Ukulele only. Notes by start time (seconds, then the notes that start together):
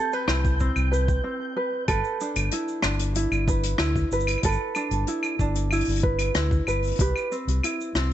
Already playing: C4 E4 G4 A4
0.13 B4
0.28 E4
0.60 C4
0.91 B4
1.24 C4
1.57 B4
1.88 A4 B4
2.21 D4
2.53 E4
2.84 D4
3.16 E4
3.48 B4
3.79 E4
4.13 B4
4.44 A4 B4
4.76 D4
5.08 E4
5.40 D4
5.72 E4
6.03 B4
6.36 E4
6.68 B4
7.01 G4 B4
7.32 C4
7.64 E4
7.95 C4